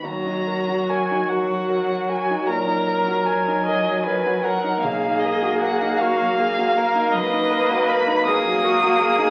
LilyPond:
<<
  \new Staff \with { instrumentName = "Violin" } { \time 12/8 \key ees \minor \tempo 4. = 51 bes''4 aes''8 ges''4 aes''8 bes''4 aes''4. ges''8 | f''8 dis''8 fis''8 f''4. dis''4 b''8 dis'''4. | }
  \new Staff \with { instrumentName = "Viola" } { \time 12/8 \key ees \minor ges'2. bes'4. ees''8 ces''8 bes'8 | aes'4. fis'8 aes'8 ais'8 b'4. aes'8 fis'8 aes'8 | }
  \new Staff \with { instrumentName = "Grand piano" } { \time 12/8 \key ees \minor ees,16 ees'16 bes'16 ges'16 bes'16 ees'16 bes'16 ges16 bes'16 ges'16 bes'16 ees'16 bes,16 ees'16 bes'16 ges'16 bes'16 ees'16 bes'16 ges16 bes'16 ges'16 bes'16 ees'16 | b,,16 dis'16 ais'16 fis'16 ais'16 dis'16 ais'16 fis16 ais'16 fis'16 ais'16 dis'16 fis,16 dis'16 ais'16 fis'16 ais'16 dis'16 ais'16 fis16 ais'16 fis'16 ais'16 dis'16 | }
  \new Staff \with { instrumentName = "Cello" } { \clef bass \time 12/8 \key ees \minor ges4. ges4. ges2. | ais2. ais4. ais4. | }
>>